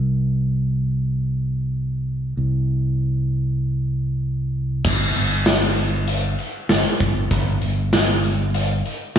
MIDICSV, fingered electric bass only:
0, 0, Header, 1, 2, 480
1, 0, Start_track
1, 0, Tempo, 617920
1, 1839, Time_signature, 4, 2, 24, 8
1, 7138, End_track
2, 0, Start_track
2, 0, Title_t, "Fingered electric bass"
2, 0, Program_c, 0, 33
2, 0, Note_on_c, 0, 36, 55
2, 1810, Note_off_c, 0, 36, 0
2, 1843, Note_on_c, 0, 36, 60
2, 3734, Note_off_c, 0, 36, 0
2, 3767, Note_on_c, 0, 31, 85
2, 3982, Note_off_c, 0, 31, 0
2, 4006, Note_on_c, 0, 31, 73
2, 4932, Note_off_c, 0, 31, 0
2, 5201, Note_on_c, 0, 31, 77
2, 5309, Note_off_c, 0, 31, 0
2, 5441, Note_on_c, 0, 31, 77
2, 5657, Note_off_c, 0, 31, 0
2, 5677, Note_on_c, 0, 31, 86
2, 5894, Note_off_c, 0, 31, 0
2, 5922, Note_on_c, 0, 31, 75
2, 6845, Note_off_c, 0, 31, 0
2, 7138, End_track
0, 0, End_of_file